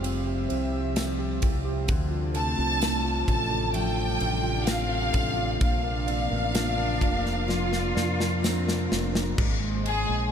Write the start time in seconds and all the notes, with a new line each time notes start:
Already playing: F1 C3 F3 G3 C4 G4 C5
0.03 C4 E5, ride
0.27 G4
0.49 C2 C5, ride
0.72 G4
0.95 C4 F4 G4, snare, ride, tambourine
1.19 G4
1.42 C2 C4, kick, ride
1.65 G4
1.88 D2 D3 A3 D4, kick, ride
2.11 F4
2.34 C4 A4 A5, ride
2.58 C2 F4
2.81 A3, snare, ride, tambourine
3.04 F4
3.28 A1 A3 A4 A5, kick, ride
3.51 F4
3.73 F3 G3 A3 G5, ride
3.96 F4
4.20 A1 A4, ride
4.43 F4
4.66 A3 C4 F4 A4 F5, snare, ride, tambourine
4.89 F4
5.13 A1 A3, kick, ride
5.36 F4
5.60 A#1 A#3 F5, kick, ride
5.84 A#4
6.07 C4 D5, ride
6.30 A1 A#4
6.54 D4 F4, snare, ride, tambourine
6.77 A#4
7.01 F1 F4 A#4, kick, ride
7.24 A#4, snare
7.48 F3 F4, snare
7.71 A#4, snare
7.95 F2 D5, snare
8.18 A#4, snare
8.42 C4 D4 F4 A#4, snare, tambourine
8.66 A#4, snare
8.89 F1 F4, snare
9.13 A#4, snare
9.37 G#1 G#3 C5 D#5 C6, kick, crash
9.59 G#3
9.83 G#3, ride
9.87 G#4
10.07 A#1 G#3